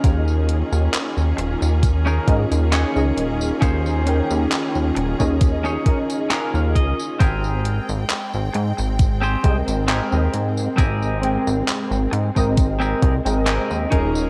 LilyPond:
<<
  \new Staff \with { instrumentName = "Clean electric guitar" } { \time 4/4 \key aes \major \tempo 4 = 67 <des' ees' aes' bes'>4 r4 r16 <des' ees' aes' bes'>16 r8 <des' ees' aes' des''>8 r8 | <des' ees' aes' c''>8. r4. <des' ees' aes' des''>16 r8 <des' ees' aes' bes' f''>8 ees''8 | <c' g' aes' bes'>8. r4. <c' g' aes' c''>16 r8 <c' g' aes' bes'>8 r8 | <c' g' aes' bes'>8. r4. <c' g' aes' bes'>16 r8 <c' g' aes' bes'>8 <des' ees' aes' bes'>8 | }
  \new Staff \with { instrumentName = "Synth keys" } { \time 4/4 \key aes \major <des' ees' aes' bes' ees''>2~ <des' ees' aes' bes' ees''>8 <des' ees' aes' bes' ees''>8. <des' ees' aes' bes' ees''>8.~ | <des' ees' aes' bes' ees''>8 <des' ees' aes' bes' g''>4~ <des' ees' aes' bes' g''>16 <des' ees' aes' bes' ees''>8. <des' ees' aes' bes' ees''>4. | r2 r8 <aes c' bes' ees'' g''>8. <aes c' bes' ees'' g''>8.~ | <aes c' bes' ees'' g''>8 <aes c' bes' g''>4~ <aes c' bes' g''>16 <aes c' bes' ees'' g''>4 <aes c' bes' ees'' g''>8. <des' ees' aes' bes' ees''>8 | }
  \new Staff \with { instrumentName = "String section" } { \time 4/4 \key aes \major << { <ees bes aes'>1~ | <ees bes aes'>1 | g''1 | r2. r8 <ees bes aes'>8 | } \\ { <des' f'>1~ | <des' f'>1 | <aes c'>1~ | <aes c'>2.~ <aes c'>8 <des' f'>8 | } >> }
  \new Staff \with { instrumentName = "Analog synth bass" } { \clef bass \time 4/4 \key aes \major ees,8. ees,16 r16 ees,16 ees,,16 ees,8. aes,16 ees,8 des,16 ees,,8 | ees,8. ees,16 r16 ees,16 ees,,16 ees,8. r8. ees,16 des,16 r16 | aes,,8. aes,,16 r16 aes,,16 aes,16 aes,,8. c,16 aes,,8 ees,16 aes,8 | aes,,8. aes,,16 r16 aes,,16 aes,16 aes,,8. c,16 aes,,8 ees,16 ees,,8 | }
  \new DrumStaff \with { instrumentName = "Drums" } \drummode { \time 4/4 <hh bd tamb>16 tamb16 hh16 tamb16 <hc hh tamb>16 tamb16 hh16 tamb16 <hh bd tamb>16 tamb16 <hh bd>16 <hh tamb>16 <hc hh tamb>16 tamb16 hh16 tamb16 | <hh bd tamb>16 tamb16 hh16 tamb16 <hc hh tamb>16 tamb16 hh16 <bd tamb>16 <hh bd tamb>16 tamb16 <hh bd>16 <hh tamb>16 <hc hh tamb>16 tamb16 <hh bd>16 tamb16 | <hh bd tamb>16 tamb16 hh16 tamb16 <hc hh tamb>16 tamb16 hh16 tamb16 <hh bd tamb>16 tamb16 <hh bd>16 <hh tamb>16 <hc hh tamb>16 tamb16 hh16 tamb16 | <hh bd tamb>16 tamb16 hh16 tamb16 <hc hh tamb>16 tamb16 hh16 <bd tamb>16 <hh bd tamb>16 tamb16 <hh bd>16 <hh tamb>16 <hc hh tamb>16 tamb16 <hh bd>16 tamb16 | }
>>